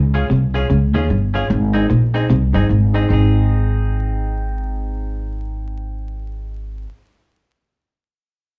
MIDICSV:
0, 0, Header, 1, 6, 480
1, 0, Start_track
1, 0, Key_signature, -4, "major"
1, 0, Tempo, 399734
1, 1806, Time_signature, 4, 2, 24, 8
1, 10305, End_track
2, 0, Start_track
2, 0, Title_t, "Upright piano"
2, 0, Program_c, 0, 0
2, 171, Note_on_c, 0, 65, 92
2, 179, Note_on_c, 0, 68, 81
2, 181, Note_on_c, 0, 73, 78
2, 187, Note_on_c, 0, 77, 95
2, 316, Note_off_c, 0, 65, 0
2, 320, Note_off_c, 0, 68, 0
2, 321, Note_off_c, 0, 73, 0
2, 324, Note_off_c, 0, 77, 0
2, 648, Note_on_c, 0, 65, 81
2, 652, Note_on_c, 0, 68, 87
2, 659, Note_on_c, 0, 73, 84
2, 663, Note_on_c, 0, 77, 91
2, 794, Note_off_c, 0, 65, 0
2, 796, Note_off_c, 0, 68, 0
2, 800, Note_off_c, 0, 73, 0
2, 802, Note_off_c, 0, 77, 0
2, 851, Note_on_c, 0, 77, 30
2, 852, Note_on_c, 0, 73, 23
2, 907, Note_off_c, 0, 77, 0
2, 908, Note_off_c, 0, 73, 0
2, 1138, Note_on_c, 0, 65, 96
2, 1138, Note_on_c, 0, 68, 87
2, 1145, Note_on_c, 0, 73, 86
2, 1150, Note_on_c, 0, 77, 100
2, 1279, Note_off_c, 0, 65, 0
2, 1279, Note_off_c, 0, 68, 0
2, 1283, Note_off_c, 0, 73, 0
2, 1285, Note_off_c, 0, 77, 0
2, 1326, Note_on_c, 0, 77, 30
2, 1329, Note_on_c, 0, 73, 28
2, 1385, Note_off_c, 0, 77, 0
2, 1386, Note_off_c, 0, 73, 0
2, 1611, Note_on_c, 0, 65, 92
2, 1615, Note_on_c, 0, 68, 78
2, 1622, Note_on_c, 0, 73, 86
2, 1627, Note_on_c, 0, 77, 103
2, 1755, Note_off_c, 0, 65, 0
2, 1757, Note_off_c, 0, 68, 0
2, 1761, Note_off_c, 0, 73, 0
2, 1764, Note_off_c, 0, 77, 0
2, 2089, Note_on_c, 0, 63, 94
2, 2095, Note_on_c, 0, 68, 83
2, 2096, Note_on_c, 0, 72, 79
2, 2102, Note_on_c, 0, 75, 93
2, 2235, Note_off_c, 0, 63, 0
2, 2237, Note_off_c, 0, 68, 0
2, 2238, Note_off_c, 0, 72, 0
2, 2241, Note_off_c, 0, 75, 0
2, 2565, Note_on_c, 0, 63, 82
2, 2568, Note_on_c, 0, 68, 83
2, 2572, Note_on_c, 0, 72, 84
2, 2577, Note_on_c, 0, 75, 92
2, 2712, Note_off_c, 0, 63, 0
2, 2714, Note_off_c, 0, 68, 0
2, 2716, Note_off_c, 0, 72, 0
2, 2718, Note_off_c, 0, 75, 0
2, 2758, Note_on_c, 0, 72, 23
2, 2758, Note_on_c, 0, 75, 26
2, 2820, Note_off_c, 0, 72, 0
2, 2820, Note_off_c, 0, 75, 0
2, 3036, Note_on_c, 0, 63, 94
2, 3042, Note_on_c, 0, 68, 87
2, 3050, Note_on_c, 0, 72, 86
2, 3054, Note_on_c, 0, 75, 105
2, 3188, Note_off_c, 0, 63, 0
2, 3191, Note_off_c, 0, 68, 0
2, 3195, Note_off_c, 0, 72, 0
2, 3197, Note_off_c, 0, 75, 0
2, 3234, Note_on_c, 0, 72, 27
2, 3234, Note_on_c, 0, 75, 30
2, 3298, Note_off_c, 0, 72, 0
2, 3298, Note_off_c, 0, 75, 0
2, 3521, Note_on_c, 0, 63, 92
2, 3525, Note_on_c, 0, 68, 80
2, 3530, Note_on_c, 0, 72, 85
2, 3537, Note_on_c, 0, 75, 100
2, 3670, Note_off_c, 0, 63, 0
2, 3672, Note_off_c, 0, 68, 0
2, 3675, Note_off_c, 0, 72, 0
2, 3678, Note_off_c, 0, 75, 0
2, 3711, Note_on_c, 0, 63, 85
2, 3717, Note_on_c, 0, 68, 73
2, 3720, Note_on_c, 0, 72, 73
2, 3726, Note_on_c, 0, 75, 85
2, 8207, Note_off_c, 0, 63, 0
2, 8212, Note_off_c, 0, 68, 0
2, 8216, Note_off_c, 0, 72, 0
2, 8222, Note_off_c, 0, 75, 0
2, 10305, End_track
3, 0, Start_track
3, 0, Title_t, "Clean electric guitar"
3, 0, Program_c, 1, 27
3, 168, Note_on_c, 1, 61, 87
3, 176, Note_on_c, 1, 65, 82
3, 180, Note_on_c, 1, 68, 85
3, 311, Note_off_c, 1, 61, 0
3, 314, Note_off_c, 1, 65, 0
3, 317, Note_off_c, 1, 68, 0
3, 652, Note_on_c, 1, 61, 83
3, 662, Note_on_c, 1, 65, 93
3, 664, Note_on_c, 1, 68, 92
3, 793, Note_off_c, 1, 61, 0
3, 797, Note_off_c, 1, 65, 0
3, 799, Note_off_c, 1, 68, 0
3, 1132, Note_on_c, 1, 61, 81
3, 1143, Note_on_c, 1, 65, 84
3, 1144, Note_on_c, 1, 68, 89
3, 1272, Note_off_c, 1, 61, 0
3, 1278, Note_off_c, 1, 65, 0
3, 1279, Note_off_c, 1, 68, 0
3, 1608, Note_on_c, 1, 61, 74
3, 1620, Note_on_c, 1, 65, 94
3, 1626, Note_on_c, 1, 68, 96
3, 1750, Note_off_c, 1, 61, 0
3, 1756, Note_off_c, 1, 65, 0
3, 1759, Note_off_c, 1, 68, 0
3, 2083, Note_on_c, 1, 60, 88
3, 2091, Note_on_c, 1, 63, 85
3, 2096, Note_on_c, 1, 68, 92
3, 2227, Note_off_c, 1, 60, 0
3, 2232, Note_off_c, 1, 63, 0
3, 2234, Note_off_c, 1, 68, 0
3, 2572, Note_on_c, 1, 60, 92
3, 2578, Note_on_c, 1, 63, 85
3, 2586, Note_on_c, 1, 68, 91
3, 2712, Note_off_c, 1, 60, 0
3, 2715, Note_off_c, 1, 63, 0
3, 2719, Note_off_c, 1, 68, 0
3, 3055, Note_on_c, 1, 60, 78
3, 3060, Note_on_c, 1, 63, 84
3, 3068, Note_on_c, 1, 68, 87
3, 3194, Note_off_c, 1, 60, 0
3, 3196, Note_off_c, 1, 63, 0
3, 3200, Note_off_c, 1, 68, 0
3, 3535, Note_on_c, 1, 60, 81
3, 3542, Note_on_c, 1, 63, 84
3, 3549, Note_on_c, 1, 68, 80
3, 3673, Note_off_c, 1, 60, 0
3, 3677, Note_off_c, 1, 63, 0
3, 3680, Note_off_c, 1, 68, 0
3, 3707, Note_on_c, 1, 60, 94
3, 3738, Note_on_c, 1, 63, 95
3, 3764, Note_on_c, 1, 68, 109
3, 8251, Note_off_c, 1, 60, 0
3, 8282, Note_off_c, 1, 63, 0
3, 8308, Note_off_c, 1, 68, 0
3, 10305, End_track
4, 0, Start_track
4, 0, Title_t, "Clean electric guitar"
4, 0, Program_c, 2, 27
4, 358, Note_on_c, 2, 48, 94
4, 536, Note_off_c, 2, 48, 0
4, 838, Note_on_c, 2, 49, 81
4, 1016, Note_off_c, 2, 49, 0
4, 1141, Note_on_c, 2, 51, 77
4, 1253, Note_off_c, 2, 51, 0
4, 1323, Note_on_c, 2, 43, 71
4, 1499, Note_off_c, 2, 43, 0
4, 1800, Note_on_c, 2, 44, 84
4, 1977, Note_off_c, 2, 44, 0
4, 2278, Note_on_c, 2, 46, 89
4, 2455, Note_off_c, 2, 46, 0
4, 2758, Note_on_c, 2, 48, 90
4, 2935, Note_off_c, 2, 48, 0
4, 3055, Note_on_c, 2, 43, 81
4, 3168, Note_off_c, 2, 43, 0
4, 3235, Note_on_c, 2, 44, 76
4, 3413, Note_off_c, 2, 44, 0
4, 10305, End_track
5, 0, Start_track
5, 0, Title_t, "Upright bass"
5, 0, Program_c, 3, 32
5, 0, Note_on_c, 3, 37, 99
5, 296, Note_off_c, 3, 37, 0
5, 371, Note_on_c, 3, 36, 95
5, 777, Note_off_c, 3, 36, 0
5, 843, Note_on_c, 3, 37, 93
5, 1135, Note_off_c, 3, 37, 0
5, 1135, Note_on_c, 3, 39, 89
5, 1297, Note_off_c, 3, 39, 0
5, 1322, Note_on_c, 3, 31, 86
5, 1732, Note_off_c, 3, 31, 0
5, 1804, Note_on_c, 3, 32, 110
5, 2212, Note_off_c, 3, 32, 0
5, 2284, Note_on_c, 3, 34, 96
5, 2692, Note_off_c, 3, 34, 0
5, 2765, Note_on_c, 3, 36, 108
5, 3013, Note_off_c, 3, 36, 0
5, 3053, Note_on_c, 3, 31, 89
5, 3215, Note_off_c, 3, 31, 0
5, 3245, Note_on_c, 3, 32, 88
5, 3653, Note_off_c, 3, 32, 0
5, 3724, Note_on_c, 3, 32, 97
5, 8220, Note_off_c, 3, 32, 0
5, 10305, End_track
6, 0, Start_track
6, 0, Title_t, "Muted clean electric guitar strokes"
6, 3243, Note_on_c, 9, 29, 39
6, 3363, Note_off_c, 9, 29, 0
6, 10305, End_track
0, 0, End_of_file